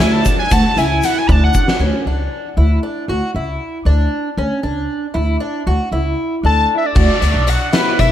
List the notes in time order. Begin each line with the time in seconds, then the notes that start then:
0.00 D2 E4 G#5 D#7, snare, closed hi-hat
0.12 A5 E7
0.25 D4, kick, closed hi-hat, shaker
0.39 G#5 D#7
0.51 D2 F#4 A5 E7, kick, closed hi-hat, shaker
0.77 C#2 E4 G#5 D#7, closed hi-hat, shaker
1.03 F#5 C#7, snare, closed hi-hat, shaker
1.18 G#5 D#7
1.27 D2 D4 B5 F#7, kick, shaker
1.32 A5 E7
1.44 F#5 C#7
1.54 kick, shaker
1.68 snare
1.79 D2 C#4
2.06 C#2 D4
2.57 D2 E4
2.83 D4
3.08 D2 F#4
3.35 C#2 E4
3.85 D2 D4
4.37 D2 C#4
4.63 C#2 D4
5.14 D2 E4
5.40 D4
5.67 D2 F#4
5.92 C#2 E4
6.43 D2 D4 A4 A5 E7
6.75 E4 E5 B6
6.84 D4 D5 A6
6.95 D2 F#4, kick, crash
7.21 D2 D4, closed hi-hat
7.34 B1
7.47 D4 F#4 F#5 C#7, closed hi-hat
7.73 B3 E4 B4 F#6, snare, closed hi-hat
7.99 B1 E4 E5 B6, kick, closed hi-hat